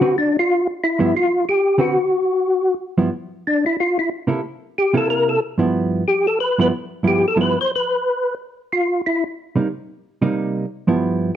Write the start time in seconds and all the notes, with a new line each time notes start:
Already playing: F#4
0.01 D3 C4 F#4 B4
0.18 D4
0.39 F4
0.84 E4
0.99 G2 F3 B3 E4
1.17 F4
1.49 G4
1.78 D3 C4 F#4 B4
2.98 G2 F3 B3 E4
3.47 D4
3.66 E4
3.80 F4
3.99 E4
4.27 C3 A#3 E4 A4
4.78 G4
4.94 C3 A#3 E4 A4
5.10 A#4
5.29 A4
5.58 G2 F3 B3 E4
6.08 G4
6.27 A4
6.40 B4
6.58 G2 F3 B3 E4 B4
7.03 G2 F3 B3 E4
7.08 G4
7.28 A4
7.36 G2 F3 B3 E4
7.41 B4
7.61 C5
7.75 B4
8.73 F4
9.06 E4
9.56 C3 G3 A#3 D#4
10.22 C3 G3 A#3 D#4
10.87 G2 F3 B3 E4